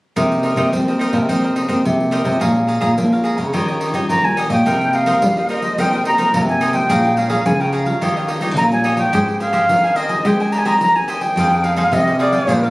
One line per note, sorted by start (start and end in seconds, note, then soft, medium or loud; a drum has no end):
0.16 0.70 C3 soft
0.16 0.52 C3 medium
0.16 0.54 A#3 soft
0.16 0.42 D#4 soft
0.16 0.55 D#4 soft
0.16 0.55 G4 soft
0.16 0.43 A#4 medium
0.16 0.44 C5 medium
0.16 0.44 D#5 medium
0.16 pandeiro medium
0.32 pandeiro soft
0.43 0.56 D#4 soft
0.43 0.56 A#4 soft
0.43 0.56 C5 soft
0.43 0.57 D#5 soft
0.43 pandeiro soft
0.56 0.69 C3 medium
0.56 0.81 A#3 soft
0.56 0.81 D#4 medium
0.56 0.67 D#4 medium
0.56 0.82 G4 medium
0.56 0.67 A#4 medium
0.56 0.67 C5 medium
0.56 0.68 D#5 medium
0.56 pandeiro soft
0.72 1.26 G3 soft
0.72 1.15 C4 medium
0.72 pandeiro medium
0.88 1.25 A#3 soft
0.88 1.25 D#4 soft
0.88 1.25 G4 medium
0.88 0.99 A#4 soft
0.88 0.99 C5 soft
0.88 1.00 D#5 soft
0.88 pandeiro soft
0.99 1.13 D#4 medium
0.99 1.13 A#4 soft
0.99 1.12 C5 medium
0.99 1.11 D#5 medium
0.99 pandeiro medium
1.12 1.26 C3 medium
1.12 1.28 A#4 soft
1.12 1.27 C5 soft
1.12 1.27 D#5 soft
1.12 pandeiro soft
1.28 1.82 C3 soft
1.28 1.55 A#3 soft
1.28 1.65 C4 medium
1.28 1.42 D#4 medium
1.28 1.55 D#4 soft
1.28 1.55 G4 soft
1.28 1.42 A#4 medium
1.28 1.43 C5 medium
1.28 1.42 D#5 medium
1.28 pandeiro medium
1.44 1.55 A#4 soft
1.44 1.56 C5 soft
1.44 1.56 D#5 soft
1.44 pandeiro soft
1.56 1.67 D#4 soft
1.56 1.67 A#4 soft
1.56 1.68 C5 soft
1.56 1.68 D#5 soft
1.56 pandeiro medium
1.68 1.94 A#3 medium
1.68 1.82 C4 medium
1.68 1.79 D#4 medium
1.68 1.94 D#4 soft
1.68 1.94 G4 medium
1.68 1.79 A#4 medium
1.68 1.79 C5 medium
1.68 1.79 D#5 medium
1.68 pandeiro soft
1.85 2.21 C3 medium
1.85 2.39 G3 soft
1.85 pandeiro medium
2.00 2.23 A#3 medium
2.00 2.24 D#4 medium
2.00 2.24 G4 medium
2.00 pandeiro soft
2.11 2.25 D#4 medium
2.11 2.25 A#4 medium
2.11 2.24 C5 medium
2.11 2.23 D#5 medium
2.11 pandeiro medium
2.25 2.38 C3 medium
2.25 2.78 G#3 medium
2.25 2.78 C#4 soft
2.25 2.79 F4 medium
2.25 2.40 A#4 soft
2.25 2.39 C5 soft
2.25 2.39 D#5 soft
2.25 pandeiro medium
2.40 2.77 A#2 medium
2.40 2.95 A#2 soft
2.40 2.66 G#4 medium
2.40 2.67 C#5 medium
2.40 2.67 F5 medium
2.40 2.68 A#5 medium
2.40 pandeiro medium
2.57 pandeiro soft
2.67 2.79 G#4 soft
2.67 2.80 C#5 soft
2.67 2.80 F5 soft
2.67 2.81 A#5 soft
2.67 pandeiro soft
2.81 2.94 A#2 medium
2.81 3.06 G#3 medium
2.81 3.06 C#4 medium
2.81 3.06 F4 medium
2.81 2.91 G#4 medium
2.81 2.92 C#5 medium
2.81 2.92 F5 medium
2.81 2.92 A#5 medium
2.81 pandeiro soft
2.97 3.51 F3 soft
2.97 3.40 A#3 medium
2.97 pandeiro medium
3.12 3.50 G#3 soft
3.12 3.50 C#4 medium
3.12 3.50 F4 medium
3.12 3.23 C#5 soft
3.12 3.24 F5 soft
3.12 3.25 A#5 soft
3.12 pandeiro soft
3.24 3.38 G#4 medium
3.24 3.38 C#5 soft
3.24 3.37 F5 medium
3.24 3.36 A#5 medium
3.24 pandeiro soft
3.37 3.50 C#3 medium
3.37 3.52 C#5 soft
3.37 3.52 F5 soft
3.37 3.51 A#5 soft
3.37 pandeiro soft
3.53 3.89 D#3 medium
3.53 4.07 D#3 soft
3.53 3.92 G3 medium
3.53 3.92 C#4 medium
3.53 3.66 D#4 medium
3.53 3.92 F4 medium
3.53 3.67 G4 medium
3.53 3.67 C#5 medium
3.53 3.67 D#5 medium
3.53 pandeiro medium
3.68 3.81 G4 soft
3.68 3.82 C#5 soft
3.68 3.81 D#5 soft
3.68 pandeiro soft
3.81 3.93 D#4 soft
3.81 3.94 G4 soft
3.81 3.94 C#5 soft
3.81 3.94 D#5 soft
3.81 pandeiro medium
3.94 4.07 D#3 medium
3.94 4.19 G3 medium
3.94 4.19 C#4 medium
3.94 4.04 D#4 medium
3.94 4.19 F4 medium
3.94 4.04 G4 medium
3.94 4.04 C#5 medium
3.94 4.05 D#5 medium
3.94 pandeiro soft
4.09 4.63 A#2 soft
4.09 4.45 D#3 medium
4.09 4.26 A#5 medium
4.09 pandeiro medium
4.25 4.48 G3 medium
4.25 4.48 C#4 medium
4.25 4.48 F4 medium
4.25 4.51 G#5 medium
4.25 pandeiro soft
4.37 4.50 D#4 medium
4.37 4.51 G4 medium
4.37 4.50 C#5 medium
4.37 4.49 D#5 medium
4.37 pandeiro medium
4.50 4.63 A#2 medium
4.50 4.92 A#3 medium
4.50 4.93 D#4 soft
4.50 4.93 G4 medium
4.50 4.65 G4 soft
4.50 4.64 C#5 soft
4.50 4.64 D#5 soft
4.50 4.96 G5 medium
4.50 pandeiro medium
4.66 5.13 C3 medium
4.66 5.20 C3 soft
4.66 4.92 D#4 medium
4.66 4.93 A#4 medium
4.66 4.94 C5 medium
4.66 4.94 D#5 medium
4.66 pandeiro medium
4.81 pandeiro soft
4.93 5.20 A#3 soft
4.93 5.05 D#4 soft
4.93 5.20 D#4 soft
4.93 5.21 G4 medium
4.93 5.06 A#4 soft
4.93 5.06 C5 soft
4.93 5.06 D#5 soft
4.93 5.51 F5 medium
4.93 pandeiro soft
5.06 5.16 D#4 medium
5.06 5.16 A#4 medium
5.06 5.17 C5 medium
5.06 5.17 D#5 medium
5.06 pandeiro medium
5.22 5.76 G2 soft
5.22 5.70 G3 medium
5.22 pandeiro medium
5.37 5.74 A#3 medium
5.37 5.74 D#4 medium
5.37 5.74 G4 medium
5.37 5.49 A#4 soft
5.37 5.49 C5 soft
5.37 5.49 D#5 soft
5.37 pandeiro soft
5.49 5.62 D#4 medium
5.49 5.63 A#4 medium
5.49 5.63 C5 medium
5.49 5.62 D#5 medium
5.49 5.82 D#5 medium
5.49 pandeiro medium
5.62 5.77 A#4 soft
5.62 5.77 C5 soft
5.62 5.76 D#5 soft
5.62 pandeiro medium
5.78 6.31 C3 medium
5.78 6.01 A#3 soft
5.78 6.34 C4 medium
5.78 6.02 D#4 medium
5.78 5.91 D#4 medium
5.78 6.02 G4 medium
5.78 5.91 A#4 medium
5.78 5.92 C5 medium
5.78 5.92 D#5 medium
5.78 6.06 G5 medium
5.78 pandeiro medium
5.93 6.04 A#4 soft
5.93 6.05 C5 soft
5.93 6.06 D#5 soft
5.93 pandeiro soft
6.05 6.32 A#3 medium
6.05 6.17 D#4 soft
6.05 6.32 D#4 medium
6.05 6.32 G4 medium
6.05 6.17 A#4 soft
6.05 6.17 C5 soft
6.05 6.18 D#5 soft
6.05 6.32 A#5 medium
6.05 pandeiro medium
6.18 6.28 D#4 medium
6.18 6.28 A#4 medium
6.18 6.28 C5 medium
6.18 6.29 D#5 medium
6.18 pandeiro medium
6.34 6.88 G2 medium
6.34 6.81 C3 medium
6.34 6.41 A#5 medium
6.34 pandeiro medium
6.48 6.86 A#3 medium
6.48 6.86 D#4 medium
6.48 6.86 G4 medium
6.48 6.76 G#5 medium
6.48 pandeiro soft
6.61 6.74 D#4 medium
6.61 6.74 A#4 medium
6.61 6.73 C5 medium
6.61 6.72 D#5 medium
6.61 pandeiro medium
6.73 6.89 A#4 soft
6.73 6.88 C5 soft
6.73 6.88 D#5 soft
6.73 7.20 G5 medium
6.73 pandeiro medium
6.89 7.37 A#2 medium
6.89 7.43 A#2 soft
6.89 7.13 G#3 medium
6.89 7.14 C#4 soft
6.89 7.16 G#4 medium
6.89 7.16 C#5 medium
6.89 7.16 F5 medium
6.89 7.17 A#5 medium
6.89 pandeiro medium
7.05 pandeiro soft
7.17 7.34 G#3 soft
7.17 7.34 C#4 soft
7.17 7.34 F4 soft
7.17 7.28 G#4 soft
7.17 7.29 C#5 soft
7.17 7.29 F5 soft
7.17 7.48 F5 medium
7.17 7.30 A#5 soft
7.17 pandeiro medium
7.30 7.40 G#4 medium
7.30 7.40 C#5 medium
7.30 7.40 F5 medium
7.30 7.40 A#5 medium
7.30 pandeiro medium
7.46 7.93 C#3 medium
7.46 7.99 F3 soft
7.46 7.72 G#3 soft
7.46 7.72 C#4 soft
7.46 7.73 F4 soft
7.46 7.62 G#5 medium
7.46 pandeiro medium
7.60 7.72 C#5 soft
7.60 7.73 F5 soft
7.60 7.75 G5 medium
7.60 7.73 A#5 soft
7.60 pandeiro soft
7.72 7.86 G#4 medium
7.72 7.86 C#5 medium
7.72 8.30 F5 medium
7.72 7.85 F5 medium
7.72 7.84 A#5 medium
7.72 pandeiro soft
7.85 8.38 G3 medium
7.85 8.38 C#4 medium
7.85 8.38 F4 medium
7.85 8.00 C#5 soft
7.85 8.00 F5 soft
7.85 7.99 A#5 soft
7.85 pandeiro medium
8.01 8.57 D#3 medium
8.01 8.55 D#3 medium
8.01 8.14 D#4 medium
8.01 8.15 G4 medium
8.01 8.15 C#5 medium
8.01 8.15 D#5 medium
8.01 pandeiro medium
8.16 8.28 G4 soft
8.16 8.29 C#5 soft
8.16 8.29 D#5 soft
8.16 pandeiro soft
8.28 8.41 D#4 soft
8.28 8.41 G4 soft
8.28 8.42 C#5 soft
8.28 8.42 D#5 medium
8.28 pandeiro medium
8.41 8.66 G3 medium
8.41 8.66 C#4 medium
8.41 8.52 D#4 medium
8.41 8.67 F4 medium
8.41 8.52 G4 medium
8.41 8.52 C#5 medium
8.41 8.52 D#5 medium
8.41 pandeiro medium
8.56 9.05 A#2 medium
8.56 9.10 A#2 medium
8.56 8.64 A#5 medium
8.56 pandeiro medium
8.71 9.11 G3 medium
8.71 9.11 C#4 medium
8.71 9.12 F4 medium
8.71 8.98 G#5 medium
8.71 pandeiro soft
8.84 8.98 D#4 medium
8.84 8.97 G4 medium
8.84 8.97 C#5 medium
8.84 8.95 D#5 medium
8.84 pandeiro medium
8.97 9.12 G4 soft
8.97 9.11 C#5 soft
8.97 9.11 D#5 soft
8.97 9.38 G5 medium
8.97 pandeiro medium
9.13 9.61 G#2 medium
9.13 9.67 G#3 soft
9.13 9.37 C4 soft
9.13 9.37 D#4 soft
9.13 9.39 G4 medium
9.13 9.37 G4 medium
9.13 9.39 C5 medium
9.13 9.41 D#5 medium
9.13 9.41 G#5 medium
9.13 pandeiro medium
9.28 pandeiro soft
9.40 9.64 C4 medium
9.40 9.65 D#4 soft
9.40 9.52 G4 soft
9.40 9.65 G4 medium
9.40 9.52 C5 soft
9.40 9.52 D#5 soft
9.40 9.98 F5 medium
9.40 9.53 G#5 soft
9.40 pandeiro medium
9.53 9.63 G4 medium
9.53 9.63 C5 medium
9.53 9.63 D#5 medium
9.53 9.63 G#5 medium
9.53 pandeiro medium
9.69 10.16 D#3 medium
9.69 10.22 D#3 soft
9.69 10.07 C4 soft
9.69 10.07 D#4 soft
9.69 10.07 G4 soft
9.69 pandeiro medium
9.84 9.96 C5 soft
9.84 9.96 D#5 soft
9.84 9.96 G#5 soft
9.84 pandeiro soft
9.95 10.09 G4 medium
9.95 10.10 C5 medium
9.95 10.28 D#5 medium
9.95 10.09 D#5 medium
9.95 10.07 G#5 medium
9.95 pandeiro medium
10.09 10.20 C4 medium
10.09 10.20 D#4 medium
10.09 10.20 G4 medium
10.09 10.24 C5 soft
10.09 10.23 D#5 soft
10.09 10.23 G#5 soft
10.09 pandeiro medium
10.25 10.81 G#3 medium
10.25 10.78 G#3 medium
10.25 10.63 C4 medium
10.25 10.63 D#4 medium
10.25 10.38 G4 medium
10.25 10.63 G4 medium
10.25 10.38 C5 medium
10.25 10.38 D#5 medium
10.25 10.54 G5 medium
10.25 10.39 G#5 medium
10.25 pandeiro medium
10.40 10.52 C5 soft
10.40 10.53 D#5 soft
10.40 10.52 G#5 soft
10.40 pandeiro soft
10.52 10.64 G4 soft
10.52 10.65 C5 soft
10.52 10.65 D#5 soft
10.52 10.65 G#5 soft
10.52 10.60 A#5 medium
10.52 pandeiro medium
10.58 10.69 G#5 medium
10.65 10.89 C4 medium
10.65 10.89 D#4 medium
10.65 10.75 G4 medium
10.65 10.89 G4 medium
10.65 10.75 C5 medium
10.65 10.75 D#5 medium
10.65 10.76 G#5 medium
10.65 10.80 A#5 medium
10.65 pandeiro medium
10.81 11.28 D#3 medium
10.81 11.34 D#3 soft
10.81 10.97 A#5 medium
10.81 pandeiro medium
10.95 11.34 C4 medium
10.95 11.35 D#4 medium
10.95 11.35 G4 medium
10.95 11.23 G#5 medium
10.95 pandeiro soft
11.08 11.21 G4 medium
11.08 11.21 C5 medium
11.08 11.21 D#5 medium
11.08 11.20 G#5 medium
11.08 pandeiro medium
11.21 11.36 C5 soft
11.21 11.35 D#5 soft
11.21 11.66 G5 medium
11.21 11.35 G#5 soft
11.21 pandeiro medium
11.36 11.83 F2 medium
11.36 11.89 F3 soft
11.36 11.74 C4 soft
11.36 11.74 D#4 soft
11.36 11.63 D#4 medium
11.36 11.74 G#4 medium
11.36 11.64 G#4 medium
11.36 11.64 C5 medium
11.36 11.65 F5 medium
11.36 pandeiro medium
11.52 pandeiro soft
11.64 11.76 D#4 soft
11.64 11.77 G#4 soft
11.64 11.77 C5 soft
11.64 11.95 F5 medium
11.64 11.77 F5 medium
11.64 pandeiro medium
11.76 12.15 C4 medium
11.76 12.15 D#4 medium
11.76 11.87 D#4 medium
11.76 12.15 G#4 medium
11.76 11.87 G#4 medium
11.76 11.87 C5 medium
11.76 11.87 F5 medium
11.76 pandeiro medium
11.92 12.39 C3 medium
11.92 12.45 C3 soft
11.92 12.19 D#5 medium
11.92 pandeiro medium
12.07 12.19 G#4 soft
12.07 12.19 C5 soft
12.07 12.19 F5 soft
12.07 pandeiro soft
12.19 12.36 C4 medium
12.19 12.32 D#4 medium
12.19 12.36 D#4 soft
12.19 12.36 G#4 medium
12.19 12.33 G#4 medium
12.19 12.32 C5 medium
12.19 12.70 D5 medium
12.19 12.31 F5 medium
12.19 pandeiro medium
12.32 12.47 G#4 soft
12.32 12.47 C5 soft
12.32 12.46 F5 soft
12.32 pandeiro medium
12.47 12.70 A#2 medium
12.47 12.70 G#3 medium
12.47 12.70 D4 medium
12.47 12.70 F4 medium
12.47 12.61 G#4 medium
12.47 12.61 A#4 medium
12.47 12.62 D5 medium
12.47 12.61 F5 medium
12.47 pandeiro medium
12.63 12.70 A#4 soft
12.63 12.70 D5 soft
12.63 12.70 F5 soft
12.63 pandeiro soft